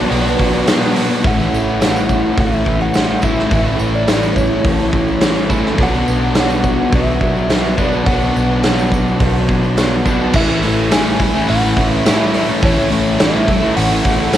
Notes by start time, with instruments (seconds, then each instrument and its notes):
Already playing: twelve-string acoustic guitar F#3 B3 D4, overdriven electric guitar B3 D4 F#4, clean electric guitar D5
0.00 overdriven electric guitar F#3
0.10 fingered electric bass B1, overdriven electric guitar B2 F#3 B3 D4 F#4, twelve-string acoustic guitar B3, open hi-hat
0.24 distorted electric guitar F#3 B3
0.38 overdriven electric guitar B2 F#3 B3 D4, kick, open hi-hat
0.66 overdriven electric guitar B2 F#3 B3 D4 F#4, twelve-string acoustic guitar F#4, snare, open hi-hat, tambourine
0.80 overdriven electric guitar F#3 B3 D4
0.94 overdriven electric guitar B2 F#3 B3 D4 F#4, open hi-hat
1.09 overdriven electric guitar F#3 B3 D4
1.22 fingered electric bass A1, overdriven electric guitar A2 E3 A3 C#4 E4, kick, tambourine
1.27 clean electric guitar F#5
1.39 tambourine
1.53 fingered electric bass A1, twelve-string acoustic guitar A3, tambourine
1.68 tambourine
1.80 distorted electric guitar A2, overdriven electric guitar E3 A3 C#4 E4, snare, open hi-hat, tambourine
1.84 clean electric guitar F#5
1.96 tambourine
2.09 twelve-string acoustic guitar C#4, kick, tambourine
2.36 fingered electric bass A1, distorted electric guitar A2, overdriven electric guitar E3 A3 C#4 E4, twelve-string acoustic guitar F#4, kick, open hi-hat, tambourine
2.40 clean electric guitar E5
2.53 tambourine
2.64 distorted electric guitar E3, overdriven electric guitar A3 C#4 E4, kick, tambourine
2.81 clean electric guitar F#5, tambourine
2.93 distorted electric guitar A2, overdriven electric guitar E3 A3 C#4 E4, snare, open hi-hat, tambourine
3.09 tambourine
3.21 overdriven electric guitar A3 C#4 E4, clean electric guitar E5, kick, tambourine
3.25 overdriven electric guitar A2 E3
3.36 snare, tambourine
3.50 fingered electric bass A1, overdriven electric guitar A2 E3 A3 C#4 E4, kick, open hi-hat, tambourine
3.65 tambourine
3.79 fingered electric bass A1, twelve-string acoustic guitar A3, tambourine
3.95 clean electric guitar D5, tambourine
4.07 distorted electric guitar A2, overdriven electric guitar E3 A3 C#4 E4, snare, open hi-hat, tambourine
4.23 tambourine
4.36 twelve-string acoustic guitar C#4, clean electric guitar C#5, kick, tambourine
4.64 fingered electric bass A1, distorted electric guitar A2, overdriven electric guitar E3 A3 C#4 E4, twelve-string acoustic guitar F#4, kick, open hi-hat, tambourine
4.80 tambourine
4.93 distorted electric guitar E3, overdriven electric guitar A3 C#4 E4, kick, tambourine
5.08 tambourine
5.20 distorted electric guitar A2, overdriven electric guitar E3 A3 C#4 E4, snare, open hi-hat, tambourine
5.37 tambourine
5.50 overdriven electric guitar A2 E3 A3 C#4 E4, kick, tambourine
5.66 snare
5.78 fingered electric bass B1, overdriven electric guitar B2 F#3 B3 D4 F#4, kick, open hi-hat, tambourine
5.83 clean electric guitar F#5
5.93 tambourine
6.08 fingered electric bass B1, twelve-string acoustic guitar B3, tambourine
6.23 tambourine
6.35 distorted electric guitar B2, overdriven electric guitar F#3 B3 D4 F#4, snare, open hi-hat, tambourine
6.40 clean electric guitar F#5
6.50 tambourine
6.64 twelve-string acoustic guitar D4, kick, tambourine
6.92 fingered electric bass B1, distorted electric guitar B2, overdriven electric guitar F#3 B3 D4 F#4, clean electric guitar E5, kick, open hi-hat, tambourine
7.07 tambourine
7.21 distorted electric guitar F#3, overdriven electric guitar B3 D4 F#4, kick, tambourine
7.36 tambourine
7.49 distorted electric guitar B2, overdriven electric guitar F#3 B3 D4 F#4, snare, open hi-hat, tambourine
7.65 tambourine
7.78 overdriven electric guitar B2 F#3 B3 D4 F#4, clean electric guitar D5, kick, tambourine
7.92 tambourine
8.06 fingered electric bass B1, overdriven electric guitar B2 F#3 B3 D4 F#4, clean electric guitar F#5, kick, open hi-hat, tambourine
8.21 tambourine
8.36 fingered electric bass B1, twelve-string acoustic guitar B3, tambourine
8.63 distorted electric guitar B2, overdriven electric guitar F#3 B3 D4 F#4, snare, open hi-hat, tambourine
8.79 tambourine
8.92 twelve-string acoustic guitar D4, kick, tambourine
9.08 tambourine
9.19 fingered electric bass B1, distorted electric guitar B2, overdriven electric guitar F#3 B3 D4 F#4, kick, open hi-hat, tambourine
9.36 tambourine
9.47 distorted electric guitar F#3, overdriven electric guitar B3 D4 F#4, kick, tambourine
9.64 tambourine
9.76 distorted electric guitar B2, overdriven electric guitar F#3 B3 D4 F#4, snare, open hi-hat, tambourine
9.92 tambourine
10.05 overdriven electric guitar B2 F#3 B3 D4 F#4, kick, tambourine
10.20 tambourine
10.33 fingered electric bass A1, overdriven electric guitar A2 E3 A3 C#4 E4, clean electric guitar E5, kick, crash
10.48 distorted electric guitar E3 A3
10.61 distorted electric guitar A2, overdriven electric guitar E3 A3 C#4 E4, open hi-hat
10.90 overdriven electric guitar A2 E3 A3 C#4 E4, clean electric guitar G#5, snare, open hi-hat, tambourine
11.04 distorted electric guitar E3, overdriven electric guitar A3 C#4 E4
11.19 overdriven electric guitar A2 E3 A3 C#4 E4, muted overdriven electric guitar stroke, muted distorted electric guitar stroke, kick, open hi-hat
11.34 distorted electric guitar E3, overdriven electric guitar A3 C#4 E4
11.48 fingered electric bass A1, overdriven electric guitar A2 E3 A3 C#4 E4, clean electric guitar F#5, open hi-hat
11.61 distorted electric guitar E3 A3
11.76 distorted electric guitar A2, overdriven electric guitar E3 A3 C#4 E4, kick, open hi-hat
11.95 clean electric guitar E5
12.04 overdriven electric guitar A2 E3 A3 C#4 E4, clean electric guitar E5, snare, open hi-hat, tambourine
12.18 overdriven electric guitar A3 C#4 E4
12.32 distorted electric guitar A2, overdriven electric guitar A2 E3 A3 C#4 E4, open hi-hat
12.46 overdriven electric guitar A3 C#4 E4
12.51 distorted electric guitar E3
12.60 fingered electric bass A1, overdriven electric guitar A2 E3 A3 C#4 E4, kick, open hi-hat
12.65 clean electric guitar C#5
12.76 distorted electric guitar E3 A3
12.90 distorted electric guitar A2, overdriven electric guitar E3 A3 C#4 E4, open hi-hat
13.18 overdriven electric guitar A2 E3 A3 C#4 E4, clean electric guitar E5, snare, open hi-hat, tambourine
13.32 overdriven electric guitar A3 C#4 E4
13.37 distorted electric guitar E3
13.46 overdriven electric guitar A2 E3 A3 C#4, muted overdriven electric guitar stroke, muted distorted electric guitar stroke, kick, open hi-hat
13.50 overdriven electric guitar E4
13.61 distorted electric guitar E3, overdriven electric guitar A3 C#4 E4
13.76 fingered electric bass A1, overdriven electric guitar A2 E3 A3 C#4 E4, clean electric guitar F#5, open hi-hat
13.90 distorted electric guitar E3 A3
14.04 distorted electric guitar A2, overdriven electric guitar E3 A3 C#4 E4, kick, open hi-hat
14.33 overdriven electric guitar A2 E3, distorted electric guitar E3, snare, open hi-hat, tambourine